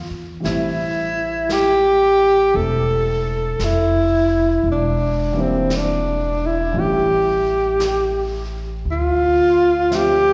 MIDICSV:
0, 0, Header, 1, 6, 480
1, 0, Start_track
1, 0, Tempo, 1054482
1, 195, Time_signature, 4, 2, 24, 8
1, 4703, End_track
2, 0, Start_track
2, 0, Title_t, "Alto saxophone"
2, 0, Program_c, 0, 65
2, 0, Note_on_c, 0, 65, 64
2, 49, Note_off_c, 0, 65, 0
2, 204, Note_on_c, 0, 64, 72
2, 694, Note_on_c, 0, 67, 82
2, 700, Note_off_c, 0, 64, 0
2, 1166, Note_on_c, 0, 69, 72
2, 1173, Note_off_c, 0, 67, 0
2, 1659, Note_on_c, 0, 64, 76
2, 1666, Note_off_c, 0, 69, 0
2, 2125, Note_off_c, 0, 64, 0
2, 2146, Note_on_c, 0, 62, 71
2, 2462, Note_on_c, 0, 60, 64
2, 2468, Note_off_c, 0, 62, 0
2, 2621, Note_on_c, 0, 62, 69
2, 2628, Note_off_c, 0, 60, 0
2, 2942, Note_on_c, 0, 64, 66
2, 2948, Note_off_c, 0, 62, 0
2, 3092, Note_on_c, 0, 67, 68
2, 3099, Note_off_c, 0, 64, 0
2, 3887, Note_off_c, 0, 67, 0
2, 4056, Note_on_c, 0, 65, 72
2, 4529, Note_on_c, 0, 67, 78
2, 4536, Note_off_c, 0, 65, 0
2, 4703, Note_off_c, 0, 67, 0
2, 4703, End_track
3, 0, Start_track
3, 0, Title_t, "Grand piano"
3, 0, Program_c, 1, 0
3, 0, Control_c, 1, 64, 127
3, 0, Note_on_c, 1, 52, 45
3, 0, Note_on_c, 1, 53, 38
3, 0, Note_on_c, 1, 56, 34
3, 0, Note_on_c, 1, 59, 35
3, 0, Note_on_c, 1, 62, 35
3, 176, Note_off_c, 1, 52, 0
3, 183, Note_on_c, 1, 52, 42
3, 190, Note_on_c, 1, 55, 38
3, 193, Note_off_c, 1, 53, 0
3, 197, Note_on_c, 1, 57, 38
3, 198, Note_off_c, 1, 56, 0
3, 201, Control_c, 1, 64, 0
3, 202, Note_off_c, 1, 59, 0
3, 203, Note_on_c, 1, 60, 39
3, 204, Note_off_c, 1, 62, 0
3, 211, Note_on_c, 1, 64, 45
3, 288, Control_c, 1, 64, 127
3, 1146, Note_off_c, 1, 60, 0
3, 1147, Note_off_c, 1, 57, 0
3, 1153, Note_on_c, 1, 60, 29
3, 1154, Note_on_c, 1, 57, 34
3, 1158, Note_off_c, 1, 64, 0
3, 1160, Note_on_c, 1, 62, 32
3, 1165, Note_on_c, 1, 64, 38
3, 2107, Note_off_c, 1, 52, 0
3, 2110, Note_off_c, 1, 55, 0
3, 2112, Note_off_c, 1, 60, 0
3, 2113, Note_off_c, 1, 57, 0
3, 2115, Note_off_c, 1, 62, 0
3, 2118, Note_off_c, 1, 64, 0
3, 2118, Control_c, 1, 64, 0
3, 2188, Control_c, 1, 64, 127
3, 2424, Note_on_c, 1, 52, 50
3, 2431, Note_on_c, 1, 55, 47
3, 2435, Note_on_c, 1, 58, 45
3, 2441, Note_on_c, 1, 62, 47
3, 2446, Note_on_c, 1, 64, 52
3, 3056, Note_off_c, 1, 52, 0
3, 3058, Note_off_c, 1, 55, 0
3, 3063, Note_on_c, 1, 52, 47
3, 3065, Note_on_c, 1, 55, 39
3, 3070, Note_off_c, 1, 58, 0
3, 3073, Note_off_c, 1, 62, 0
3, 3073, Note_on_c, 1, 57, 44
3, 3076, Note_off_c, 1, 64, 0
3, 3077, Note_on_c, 1, 61, 39
3, 3078, Control_c, 1, 64, 0
3, 3083, Note_on_c, 1, 64, 48
3, 3157, Control_c, 1, 64, 127
3, 4027, Note_off_c, 1, 52, 0
3, 4028, Note_off_c, 1, 55, 0
3, 4032, Note_off_c, 1, 57, 0
3, 4034, Note_off_c, 1, 61, 0
3, 4037, Note_off_c, 1, 64, 0
3, 4037, Control_c, 1, 64, 0
3, 4112, Control_c, 1, 64, 127
3, 4509, Note_on_c, 1, 53, 44
3, 4512, Note_on_c, 1, 57, 39
3, 4514, Note_on_c, 1, 60, 43
3, 4514, Note_on_c, 1, 62, 39
3, 4514, Note_on_c, 1, 76, 51
3, 4703, Note_off_c, 1, 53, 0
3, 4703, Note_off_c, 1, 57, 0
3, 4703, Note_off_c, 1, 60, 0
3, 4703, Note_off_c, 1, 62, 0
3, 4703, Note_off_c, 1, 76, 0
3, 4703, End_track
4, 0, Start_track
4, 0, Title_t, "Upright bass"
4, 0, Program_c, 2, 32
4, 202, Note_on_c, 2, 33, 55
4, 1139, Note_off_c, 2, 33, 0
4, 1159, Note_on_c, 2, 28, 60
4, 1617, Note_off_c, 2, 28, 0
4, 1637, Note_on_c, 2, 29, 53
4, 2096, Note_off_c, 2, 29, 0
4, 2110, Note_on_c, 2, 28, 61
4, 3052, Note_off_c, 2, 28, 0
4, 3069, Note_on_c, 2, 33, 66
4, 4012, Note_off_c, 2, 33, 0
4, 4030, Note_on_c, 2, 38, 61
4, 4703, Note_off_c, 2, 38, 0
4, 4703, End_track
5, 0, Start_track
5, 0, Title_t, "Muted upright bass strokes"
5, 48, Note_on_c, 9, 29, 25
5, 93, Note_off_c, 9, 29, 0
5, 4703, End_track
6, 0, Start_track
6, 0, Title_t, "Drums"
6, 202, Note_on_c, 9, 25, 27
6, 202, Note_on_c, 9, 38, 24
6, 247, Note_off_c, 9, 38, 0
6, 680, Note_off_c, 9, 25, 0
6, 680, Note_on_c, 9, 25, 31
6, 680, Note_on_c, 9, 38, 38
6, 680, Note_on_c, 9, 44, 44
6, 725, Note_off_c, 9, 38, 0
6, 725, Note_off_c, 9, 44, 0
6, 1156, Note_off_c, 9, 25, 0
6, 1156, Note_on_c, 9, 25, 33
6, 1636, Note_off_c, 9, 25, 0
6, 1636, Note_on_c, 9, 25, 33
6, 1636, Note_on_c, 9, 38, 36
6, 1636, Note_on_c, 9, 44, 51
6, 1682, Note_off_c, 9, 38, 0
6, 1682, Note_off_c, 9, 44, 0
6, 2118, Note_off_c, 9, 25, 0
6, 2118, Note_on_c, 9, 25, 36
6, 2594, Note_off_c, 9, 25, 0
6, 2594, Note_on_c, 9, 25, 27
6, 2594, Note_on_c, 9, 38, 38
6, 2594, Note_on_c, 9, 44, 43
6, 2640, Note_off_c, 9, 38, 0
6, 2640, Note_off_c, 9, 44, 0
6, 3070, Note_off_c, 9, 25, 0
6, 3070, Note_on_c, 9, 25, 35
6, 3550, Note_off_c, 9, 25, 0
6, 3550, Note_on_c, 9, 25, 31
6, 3550, Note_on_c, 9, 38, 35
6, 3550, Note_on_c, 9, 44, 49
6, 3596, Note_off_c, 9, 38, 0
6, 3596, Note_off_c, 9, 44, 0
6, 4032, Note_off_c, 9, 25, 0
6, 4032, Note_on_c, 9, 25, 28
6, 4514, Note_off_c, 9, 25, 0
6, 4514, Note_on_c, 9, 25, 29
6, 4514, Note_on_c, 9, 38, 35
6, 4514, Note_on_c, 9, 44, 51
6, 4559, Note_off_c, 9, 38, 0
6, 4559, Note_off_c, 9, 44, 0
6, 4703, Note_off_c, 9, 25, 0
6, 4703, End_track
0, 0, End_of_file